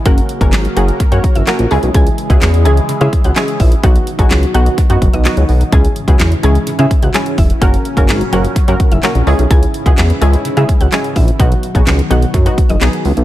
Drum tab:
HH |xxxxxxxxxxxxxxox|xxxxxxxxxxxxxxox|xxxxxxxxxxxxxxox|xxxxxxxxxxxxxxox|
CP |----x-------x---|----x-------x---|----x-------x---|----x-------x---|
SD |----o-------o---|----o-------o---|----o-------o---|----o-------o---|
BD |o--o----o-o-----|o--o------o---o-|o--o----o-o-----|o--o------o---o-|

HH |xxxxxxxxxxxxxxox|xxxxxxxxxxxxxxox|xxxxxxxxxxxxxxox|
CP |----x-------x---|----x-------x---|----x-------x---|
SD |----o-------o---|----o-------o---|----o-------o---|
BD |o--o----o-o-----|o--o------o---o-|o--o----o-o-----|